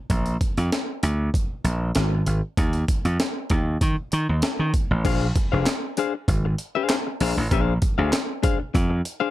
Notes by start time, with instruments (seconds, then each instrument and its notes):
0.10 slap bass A#1, kick, closed hi-hat
0.26 closed hi-hat
0.41 kick, closed hi-hat
0.57 slap bass F2, closed hi-hat
0.72 snare, closed hi-hat
1.03 slap bass D2, closed hi-hat
1.34 kick, closed hi-hat
1.64 slap bass A#1, closed hi-hat
1.95 slap bass G#1, snare, closed hi-hat
2.26 slap bass G#1, closed hi-hat
2.57 slap bass D#2, kick, closed hi-hat
2.73 closed hi-hat
2.88 kick, closed hi-hat
3.05 slap bass F2, closed hi-hat
3.20 snare, closed hi-hat
3.50 slap bass D#2, kick, closed hi-hat
3.81 slap bass D#3, kick, closed hi-hat
4.12 slap bass D#3, closed hi-hat
4.29 slap bass D#2
4.42 snare, closed hi-hat
4.59 slap bass D#3
4.74 kick, closed hi-hat
4.91 slap bass A1
5.05 slap bass A#1, clean electric guitar D4 G#4 C5 F5, kick, closed hi-hat, crash
5.36 muted clean electric guitar stroke, kick, closed hi-hat
5.52 slap bass F1, clean electric guitar D4 G#4 C5 F5
5.66 muted clean electric guitar stroke, snare, clap, closed hi-hat
5.97 clean electric guitar D4 G#4 C5 F5, closed hi-hat
6.14 muted clean electric guitar stroke
6.28 slap bass G#1, muted clean electric guitar stroke, kick, closed hi-hat
6.45 muted clean electric guitar stroke
6.58 closed hi-hat
6.75 clean electric guitar D4 G#4 C5 F5
6.89 snare, clap, closed hi-hat
7.07 muted clean electric guitar stroke
7.20 slap bass A#1, clean electric guitar D4 G#4 C5 F5, open hi-hat
7.37 slap bass A1, muted clean electric guitar stroke
7.51 slap bass A#1, clean electric guitar D4 G#4 C5 F5, kick, closed hi-hat
7.82 muted clean electric guitar stroke, kick, closed hi-hat
7.98 slap bass D2, clean electric guitar D4 G#4 C5 F5
8.12 muted clean electric guitar stroke, snare, clap, closed hi-hat
8.43 clean electric guitar D4 G#4 C5 F5, kick, closed hi-hat
8.60 muted clean electric guitar stroke
8.74 slap bass F2, muted clean electric guitar stroke, kick, closed hi-hat
8.90 muted clean electric guitar stroke
9.05 closed hi-hat
9.20 clean electric guitar D4 G#4 C5 F5